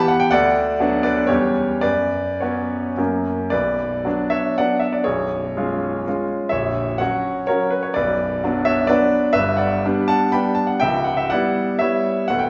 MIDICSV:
0, 0, Header, 1, 2, 480
1, 0, Start_track
1, 0, Key_signature, 2, "minor"
1, 0, Tempo, 468750
1, 361, Time_signature, 3, 2, 24, 8
1, 1338, Tempo, 562852
1, 2778, Tempo, 532860
1, 4218, Tempo, 483481
1, 7098, Tempo, 472069
1, 10458, Tempo, 497100
1, 12096, End_track
2, 0, Start_track
2, 0, Title_t, "Grand piano"
2, 0, Program_c, 0, 0
2, 0, Note_on_c, 0, 52, 55
2, 0, Note_on_c, 0, 59, 56
2, 0, Note_on_c, 0, 67, 62
2, 0, Note_on_c, 0, 81, 85
2, 83, Note_on_c, 0, 78, 81
2, 109, Note_off_c, 0, 81, 0
2, 201, Note_on_c, 0, 79, 82
2, 223, Note_off_c, 0, 78, 0
2, 310, Note_off_c, 0, 52, 0
2, 313, Note_off_c, 0, 59, 0
2, 314, Note_off_c, 0, 67, 0
2, 314, Note_on_c, 0, 78, 100
2, 326, Note_on_c, 0, 74, 81
2, 337, Note_on_c, 0, 38, 70
2, 339, Note_off_c, 0, 79, 0
2, 549, Control_c, 0, 64, 127
2, 815, Note_off_c, 0, 38, 0
2, 821, Note_on_c, 0, 54, 58
2, 822, Note_on_c, 0, 59, 57
2, 831, Note_on_c, 0, 62, 62
2, 1027, Note_off_c, 0, 74, 0
2, 1057, Note_on_c, 0, 74, 84
2, 1062, Note_off_c, 0, 78, 0
2, 1064, Note_on_c, 0, 71, 61
2, 1286, Note_off_c, 0, 54, 0
2, 1286, Note_off_c, 0, 59, 0
2, 1291, Note_off_c, 0, 62, 0
2, 1299, Note_on_c, 0, 73, 79
2, 1308, Note_off_c, 0, 71, 0
2, 1318, Note_on_c, 0, 67, 60
2, 1323, Note_off_c, 0, 74, 0
2, 1324, Note_on_c, 0, 40, 59
2, 1328, Note_on_c, 0, 55, 43
2, 1331, Note_on_c, 0, 61, 40
2, 1350, Control_c, 0, 64, 0
2, 1525, Control_c, 0, 64, 127
2, 1756, Note_off_c, 0, 67, 0
2, 1759, Note_off_c, 0, 55, 0
2, 1760, Note_off_c, 0, 61, 0
2, 1771, Note_on_c, 0, 74, 81
2, 1778, Note_off_c, 0, 40, 0
2, 1781, Note_off_c, 0, 73, 0
2, 1783, Note_on_c, 0, 71, 57
2, 1788, Note_on_c, 0, 42, 49
2, 1806, Control_c, 0, 64, 0
2, 2004, Control_c, 0, 64, 127
2, 2255, Note_off_c, 0, 71, 0
2, 2274, Note_on_c, 0, 73, 53
2, 2277, Note_off_c, 0, 42, 0
2, 2283, Note_off_c, 0, 74, 0
2, 2287, Note_on_c, 0, 54, 47
2, 2288, Note_on_c, 0, 66, 40
2, 2295, Note_on_c, 0, 59, 49
2, 2300, Note_on_c, 0, 61, 50
2, 2739, Note_off_c, 0, 54, 0
2, 2739, Note_off_c, 0, 66, 0
2, 2743, Note_off_c, 0, 59, 0
2, 2745, Note_off_c, 0, 61, 0
2, 2759, Note_on_c, 0, 54, 40
2, 2766, Note_off_c, 0, 73, 0
2, 2766, Note_on_c, 0, 42, 54
2, 2766, Note_on_c, 0, 58, 38
2, 2772, Note_on_c, 0, 61, 36
2, 2785, Control_c, 0, 64, 0
2, 2986, Control_c, 0, 64, 127
2, 3211, Note_off_c, 0, 54, 0
2, 3215, Note_off_c, 0, 58, 0
2, 3218, Note_off_c, 0, 61, 0
2, 3235, Note_on_c, 0, 74, 73
2, 3237, Note_off_c, 0, 42, 0
2, 3249, Note_on_c, 0, 71, 57
2, 3254, Note_on_c, 0, 35, 51
2, 3258, Note_on_c, 0, 23, 45
2, 3265, Control_c, 0, 64, 0
2, 3466, Control_c, 0, 64, 127
2, 3718, Note_off_c, 0, 35, 0
2, 3720, Note_off_c, 0, 23, 0
2, 3727, Note_on_c, 0, 54, 48
2, 3736, Note_on_c, 0, 59, 43
2, 3743, Note_on_c, 0, 62, 53
2, 3746, Control_c, 0, 64, 0
2, 3940, Note_off_c, 0, 71, 0
2, 3953, Note_on_c, 0, 76, 75
2, 3964, Note_on_c, 0, 73, 59
2, 3969, Note_off_c, 0, 74, 0
2, 4178, Note_off_c, 0, 54, 0
2, 4183, Note_off_c, 0, 59, 0
2, 4186, Note_off_c, 0, 62, 0
2, 4193, Note_off_c, 0, 73, 0
2, 4204, Note_off_c, 0, 76, 0
2, 4204, Note_on_c, 0, 78, 76
2, 4207, Note_on_c, 0, 74, 60
2, 4219, Note_on_c, 0, 59, 40
2, 4221, Note_on_c, 0, 54, 39
2, 4228, Note_on_c, 0, 62, 44
2, 4418, Note_on_c, 0, 76, 59
2, 4441, Note_off_c, 0, 74, 0
2, 4457, Note_off_c, 0, 78, 0
2, 4548, Note_on_c, 0, 74, 60
2, 4560, Note_off_c, 0, 76, 0
2, 4661, Note_off_c, 0, 59, 0
2, 4661, Note_on_c, 0, 73, 73
2, 4662, Note_off_c, 0, 54, 0
2, 4663, Note_on_c, 0, 68, 49
2, 4665, Note_off_c, 0, 62, 0
2, 4676, Note_on_c, 0, 23, 45
2, 4678, Note_on_c, 0, 35, 53
2, 4682, Note_off_c, 0, 74, 0
2, 4867, Control_c, 0, 64, 127
2, 5155, Note_off_c, 0, 23, 0
2, 5156, Note_off_c, 0, 35, 0
2, 5186, Note_on_c, 0, 56, 45
2, 5193, Note_on_c, 0, 65, 51
2, 5196, Note_on_c, 0, 61, 46
2, 5638, Note_off_c, 0, 56, 0
2, 5642, Note_off_c, 0, 65, 0
2, 5643, Note_off_c, 0, 61, 0
2, 5684, Note_on_c, 0, 56, 42
2, 5689, Control_c, 0, 64, 0
2, 5694, Note_on_c, 0, 65, 44
2, 5698, Note_on_c, 0, 61, 39
2, 5849, Note_off_c, 0, 68, 0
2, 5887, Note_off_c, 0, 73, 0
2, 6097, Note_off_c, 0, 56, 0
2, 6101, Note_off_c, 0, 65, 0
2, 6103, Note_off_c, 0, 61, 0
2, 6104, Note_on_c, 0, 76, 72
2, 6124, Note_on_c, 0, 73, 59
2, 6127, Note_on_c, 0, 22, 49
2, 6136, Note_on_c, 0, 34, 50
2, 6296, Control_c, 0, 64, 127
2, 6574, Note_off_c, 0, 73, 0
2, 6589, Note_on_c, 0, 78, 74
2, 6595, Note_off_c, 0, 22, 0
2, 6598, Note_off_c, 0, 76, 0
2, 6600, Note_off_c, 0, 34, 0
2, 6605, Note_on_c, 0, 73, 60
2, 6613, Note_on_c, 0, 54, 49
2, 6622, Note_on_c, 0, 61, 52
2, 6623, Control_c, 0, 64, 0
2, 6623, Note_on_c, 0, 66, 57
2, 7058, Note_off_c, 0, 54, 0
2, 7058, Note_off_c, 0, 73, 0
2, 7063, Note_off_c, 0, 61, 0
2, 7063, Note_off_c, 0, 66, 0
2, 7073, Note_on_c, 0, 73, 74
2, 7086, Note_off_c, 0, 78, 0
2, 7087, Note_on_c, 0, 70, 56
2, 7098, Note_on_c, 0, 54, 42
2, 7101, Note_on_c, 0, 61, 45
2, 7114, Note_on_c, 0, 66, 44
2, 7313, Note_on_c, 0, 71, 59
2, 7316, Note_off_c, 0, 70, 0
2, 7326, Note_off_c, 0, 73, 0
2, 7435, Note_on_c, 0, 73, 60
2, 7444, Note_off_c, 0, 71, 0
2, 7532, Note_off_c, 0, 54, 0
2, 7533, Note_off_c, 0, 61, 0
2, 7540, Note_off_c, 0, 66, 0
2, 7550, Note_on_c, 0, 74, 75
2, 7561, Note_off_c, 0, 73, 0
2, 7573, Note_on_c, 0, 35, 56
2, 7573, Note_on_c, 0, 71, 62
2, 7577, Note_on_c, 0, 23, 51
2, 7734, Control_c, 0, 64, 127
2, 8040, Note_off_c, 0, 35, 0
2, 8042, Note_off_c, 0, 23, 0
2, 8055, Note_on_c, 0, 54, 51
2, 8065, Note_on_c, 0, 59, 50
2, 8066, Note_on_c, 0, 62, 54
2, 8264, Note_off_c, 0, 71, 0
2, 8273, Note_on_c, 0, 76, 86
2, 8280, Note_on_c, 0, 73, 60
2, 8293, Note_off_c, 0, 74, 0
2, 8499, Note_on_c, 0, 74, 83
2, 8501, Note_off_c, 0, 54, 0
2, 8507, Note_off_c, 0, 59, 0
2, 8507, Note_off_c, 0, 62, 0
2, 8512, Note_off_c, 0, 73, 0
2, 8516, Note_on_c, 0, 71, 60
2, 8526, Note_off_c, 0, 76, 0
2, 8526, Note_on_c, 0, 54, 46
2, 8531, Note_on_c, 0, 62, 49
2, 8536, Note_on_c, 0, 59, 45
2, 8548, Control_c, 0, 64, 0
2, 8949, Note_off_c, 0, 54, 0
2, 8949, Note_off_c, 0, 71, 0
2, 8951, Note_off_c, 0, 62, 0
2, 8954, Note_off_c, 0, 59, 0
2, 8962, Note_on_c, 0, 76, 91
2, 8964, Note_on_c, 0, 71, 65
2, 8976, Note_off_c, 0, 74, 0
2, 8983, Note_on_c, 0, 31, 53
2, 8986, Note_on_c, 0, 43, 54
2, 9168, Control_c, 0, 64, 127
2, 9201, Note_off_c, 0, 71, 0
2, 9206, Note_on_c, 0, 78, 65
2, 9218, Note_off_c, 0, 76, 0
2, 9221, Note_on_c, 0, 74, 52
2, 9465, Note_off_c, 0, 31, 0
2, 9466, Note_off_c, 0, 43, 0
2, 9497, Control_c, 0, 64, 0
2, 9498, Note_on_c, 0, 62, 59
2, 9500, Note_on_c, 0, 55, 54
2, 9508, Note_on_c, 0, 59, 49
2, 9694, Note_off_c, 0, 74, 0
2, 9722, Note_off_c, 0, 78, 0
2, 9724, Note_on_c, 0, 81, 93
2, 9739, Note_on_c, 0, 78, 66
2, 9944, Note_off_c, 0, 62, 0
2, 9945, Note_off_c, 0, 55, 0
2, 9949, Note_off_c, 0, 59, 0
2, 9963, Note_off_c, 0, 78, 0
2, 9972, Note_on_c, 0, 83, 76
2, 9973, Note_off_c, 0, 81, 0
2, 9980, Note_on_c, 0, 79, 57
2, 9989, Note_on_c, 0, 55, 45
2, 9992, Note_on_c, 0, 62, 49
2, 9996, Note_on_c, 0, 59, 46
2, 10202, Note_off_c, 0, 79, 0
2, 10202, Note_on_c, 0, 81, 71
2, 10215, Note_off_c, 0, 83, 0
2, 10326, Note_on_c, 0, 78, 64
2, 10330, Note_off_c, 0, 81, 0
2, 10422, Note_off_c, 0, 55, 0
2, 10424, Note_off_c, 0, 62, 0
2, 10426, Note_off_c, 0, 59, 0
2, 10452, Note_off_c, 0, 78, 0
2, 10455, Note_on_c, 0, 79, 86
2, 10467, Note_on_c, 0, 76, 62
2, 10478, Note_on_c, 0, 37, 58
2, 10479, Note_on_c, 0, 25, 51
2, 10674, Control_c, 0, 64, 127
2, 10681, Note_off_c, 0, 76, 0
2, 10691, Note_off_c, 0, 79, 0
2, 10693, Note_on_c, 0, 78, 66
2, 10814, Note_off_c, 0, 78, 0
2, 10817, Note_on_c, 0, 76, 67
2, 10934, Note_off_c, 0, 37, 0
2, 10935, Note_off_c, 0, 25, 0
2, 10940, Note_off_c, 0, 76, 0
2, 10940, Note_on_c, 0, 78, 82
2, 10945, Control_c, 0, 64, 0
2, 10952, Note_on_c, 0, 74, 59
2, 10963, Note_on_c, 0, 55, 50
2, 10971, Note_on_c, 0, 59, 50
2, 10971, Note_on_c, 0, 64, 54
2, 11397, Note_off_c, 0, 74, 0
2, 11398, Note_off_c, 0, 55, 0
2, 11402, Note_off_c, 0, 59, 0
2, 11402, Note_off_c, 0, 64, 0
2, 11412, Note_on_c, 0, 76, 78
2, 11425, Note_off_c, 0, 78, 0
2, 11431, Note_on_c, 0, 73, 57
2, 11434, Note_on_c, 0, 55, 43
2, 11438, Note_on_c, 0, 64, 44
2, 11443, Note_on_c, 0, 59, 38
2, 11867, Note_off_c, 0, 55, 0
2, 11869, Note_off_c, 0, 64, 0
2, 11871, Note_off_c, 0, 59, 0
2, 11871, Note_off_c, 0, 73, 0
2, 11886, Note_on_c, 0, 78, 81
2, 11894, Note_off_c, 0, 76, 0
2, 11905, Note_on_c, 0, 26, 44
2, 11905, Note_on_c, 0, 59, 38
2, 11907, Note_on_c, 0, 38, 49
2, 11907, Note_on_c, 0, 66, 36
2, 11994, Note_on_c, 0, 79, 59
2, 12011, Note_off_c, 0, 78, 0
2, 12082, Control_c, 0, 64, 127
2, 12096, Note_off_c, 0, 26, 0
2, 12096, Note_off_c, 0, 38, 0
2, 12096, Note_off_c, 0, 59, 0
2, 12096, Note_off_c, 0, 66, 0
2, 12096, Note_off_c, 0, 79, 0
2, 12096, End_track
0, 0, End_of_file